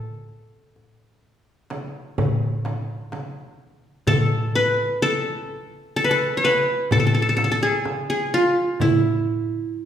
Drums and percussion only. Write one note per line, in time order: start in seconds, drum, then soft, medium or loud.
0.28 darbuka ka soft
0.76 darbuka ka soft
1.70 darbuka tek medium
1.70 frame drum medium
2.18 frame drum medium
2.18 darbuka dum medium
2.65 darbuka tek medium
2.65 frame drum medium
3.12 darbuka tek medium
3.12 frame drum medium
4.07 darbuka dum medium
4.07 frame drum medium
4.54 darbuka ka soft
5.49 darbuka ka soft
6.44 darbuka tek medium
6.44 frame drum medium
6.91 frame drum medium
6.91 darbuka dum medium
7.38 darbuka tek medium
7.38 frame drum medium
7.85 darbuka tek medium
7.85 frame drum medium
8.80 darbuka dum medium
8.80 frame drum medium
9.27 darbuka ka soft
9.74 darbuka ka soft